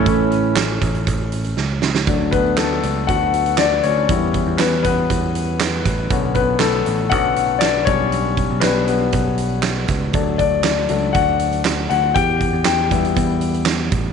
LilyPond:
<<
  \new Staff \with { instrumentName = "Grand piano" } { \time 4/4 \key d \major \tempo 4 = 119 r1 | r8 <b b'>8 <a a'>4 <fis' fis''>4 <d' d''>8 <cis' cis''>8~ | <cis' cis''>4 <b b'>8 <b b'>4 r4. | r8 <b b'>8 <a a'>4 <fis' fis''>4 <d' d''>8 <cis' cis''>8~ |
<cis' cis''>4 b'8 <b b'>4 r4. | r8 <d' d''>4. <fis' fis''>4. <fis' fis''>8 | <g' g''>4 <g' g''>2 r4 | }
  \new Staff \with { instrumentName = "Grand piano" } { \time 4/4 \key d \major <e a cis'>8 r2. r8 | <fis a d'>4. r2 r8 | <g b e'>4. r2 r8 | <d b cis'>8 r4. <d b cis'>8 r4 <g b d'>8~ |
<g b d'>4 <g b d'>8 r2 r8 | <fis a d'>4. <fis a d'>8 r2 | r4. <g b e'>2~ <g b e'>8 | }
  \new Staff \with { instrumentName = "Picked electric bass" } { \clef bass \time 4/4 \key d \major a,,4. a,,8 a,,4 cis,8 cis,8 | d,4. cis,8 d,4. d,8 | e,8. e,16 e,4 e,4. a,,8 | b,,4. a,,8 b,,4. b,,8 |
b,,8. b,,16 b,,4 b,,4. cis,8 | d,4. cis,8 d,4. d,8 | e,8. e,16 e,4 e,4. a,,8 | }
  \new DrumStaff \with { instrumentName = "Drums" } \drummode { \time 4/4 <hh bd>8 hh8 <hc hh sn>8 <hh bd>16 hh16 <hh bd>8 hh16 hh16 sn8 sn16 sn16 | <hh bd>8 <hh bd>8 <hc hh sn>8 hh8 <hh bd>8 hh16 hh16 <hc hh sn>8 hh8 | <hh bd>8 <hh bd>8 <hc hh sn>8 <hh bd>8 <hh bd>8 hh8 <hc hh sn>8 <hh bd sn>8 | <hh bd>8 <hh bd>8 <hc hh sn>8 hh8 <hh bd>8 hh8 <hc hh sn>8 <hh bd>8 |
hh8 <hh bd>8 <hc hh sn>8 hh8 <hh bd>8 hh8 <hc hh sn>8 <hh bd sn>8 | <hh bd>8 <hh bd>8 <hc hh sn>8 hh8 <hh bd>8 hh16 hh16 <hc hh sn>8 hh8 | <hh bd>8 <hh bd>8 <hc hh sn>8 <hh bd>16 hh16 <hh bd>8 hh16 hh16 <hc hh sn>8 <hh bd>8 | }
>>